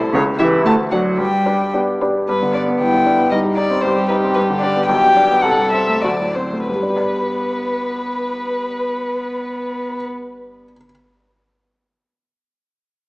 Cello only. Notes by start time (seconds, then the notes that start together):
0.13 C#3
0.40 E3
0.64 A3
0.90 F#3
1.18 G3
2.27 B3
3.31 G3
5.45 G3
6.04 F#3
6.68 B3